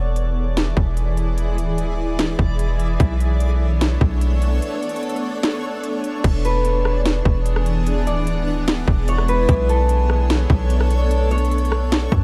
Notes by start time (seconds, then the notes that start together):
Already playing: E1 E3 G#3 E4 G#4 D5
0.16 closed hi-hat
0.57 snare, closed hi-hat
0.77 E1, kick
0.97 closed hi-hat
1.17 closed hi-hat
1.38 closed hi-hat
1.58 D1, closed hi-hat
1.78 closed hi-hat
2.19 snare, closed hi-hat
2.39 E1, kick
2.59 closed hi-hat
2.80 closed hi-hat
3.00 B1 A3 B3 D4 A4 C#5, kick, closed hi-hat
3.20 closed hi-hat
3.40 closed hi-hat
3.81 snare, closed hi-hat
4.01 B1, kick
4.21 closed hi-hat
4.42 closed hi-hat
4.62 closed hi-hat
4.83 closed hi-hat
4.89 closed hi-hat
4.96 closed hi-hat
5.03 closed hi-hat
5.09 closed hi-hat
5.16 closed hi-hat
5.43 snare, closed hi-hat
5.84 closed hi-hat
6.04 closed hi-hat
6.24 E1 E3 G#3 B3 D4 E4 G#4 D5, kick, closed hi-hat, crash
6.45 B4, closed hi-hat
6.65 closed hi-hat
6.85 cross-stick
7.05 snare, closed hi-hat
7.25 E1, kick
7.46 closed hi-hat
7.56 cross-stick
7.66 closed hi-hat
7.87 closed hi-hat
8.07 D1 D5, closed hi-hat
8.27 closed hi-hat
8.68 snare, closed hi-hat
8.88 E1, kick
9.08 C#5, closed hi-hat
9.18 cross-stick
9.28 B4, closed hi-hat
9.49 B1 A3 D4 A4 C#5, kick, closed hi-hat
9.69 A4, closed hi-hat
9.89 closed hi-hat
10.10 cross-stick
10.30 snare, closed hi-hat
10.50 B1, kick
10.70 closed hi-hat
10.80 cross-stick
10.90 closed hi-hat
11.11 closed hi-hat
11.31 C#5, closed hi-hat
11.38 closed hi-hat
11.45 closed hi-hat
11.51 closed hi-hat
11.58 closed hi-hat
11.65 closed hi-hat
11.72 cross-stick
11.92 snare, closed hi-hat
12.12 F#2, kick